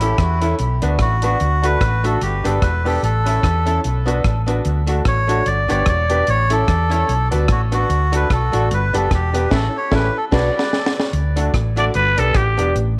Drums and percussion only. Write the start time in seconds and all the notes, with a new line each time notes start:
0.01 closed hi-hat
0.18 kick, cross-stick, closed hi-hat
0.42 closed hi-hat
0.59 closed hi-hat
0.82 closed hi-hat
0.99 kick, cross-stick, closed hi-hat
1.22 closed hi-hat
1.40 closed hi-hat
1.64 closed hi-hat
1.81 kick, cross-stick, closed hi-hat
2.04 closed hi-hat
2.21 closed hi-hat
2.45 closed hi-hat
2.62 kick, cross-stick, closed hi-hat
2.86 open hi-hat
3.04 closed hi-hat
3.26 closed hi-hat
3.43 kick, cross-stick, closed hi-hat
3.67 closed hi-hat
3.84 closed hi-hat
4.08 closed hi-hat
4.24 kick, cross-stick, closed hi-hat
4.48 closed hi-hat
4.65 closed hi-hat
4.87 closed hi-hat
5.05 kick, cross-stick, closed hi-hat
5.29 closed hi-hat
5.46 closed hi-hat
5.70 closed hi-hat
5.86 kick, cross-stick, closed hi-hat
6.10 closed hi-hat
6.27 closed hi-hat
6.50 closed hi-hat
6.68 kick, cross-stick, closed hi-hat
6.91 closed hi-hat
7.09 closed hi-hat
7.32 closed hi-hat
7.48 kick, cross-stick, closed hi-hat
7.72 closed hi-hat
7.90 closed hi-hat
8.13 closed hi-hat
8.30 kick, cross-stick, closed hi-hat
8.53 closed hi-hat
8.71 closed hi-hat
8.94 closed hi-hat
9.11 kick, cross-stick, closed hi-hat
9.35 closed hi-hat
9.51 kick, snare, crash
9.92 kick, snare
10.32 kick, snare, crash
10.59 snare
10.73 snare
10.86 snare
11.00 snare
11.13 closed hi-hat
11.37 closed hi-hat
11.54 kick, cross-stick, closed hi-hat
11.77 closed hi-hat
11.94 closed hi-hat
12.18 closed hi-hat
12.35 kick, cross-stick, closed hi-hat
12.59 closed hi-hat
12.76 closed hi-hat